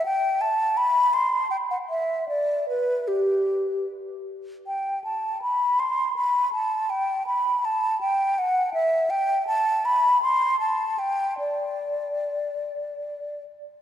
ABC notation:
X:1
M:3/4
L:1/16
Q:1/4=79
K:G
V:1 name="Flute"
g2 a2 b2 c'2 g f e2 | d2 B2 G4 z4 | g2 a2 b2 c'2 b2 a2 | g2 b2 a2 g2 f2 e2 |
g2 a2 b2 c'2 a2 g2 | d8- d2 z2 |]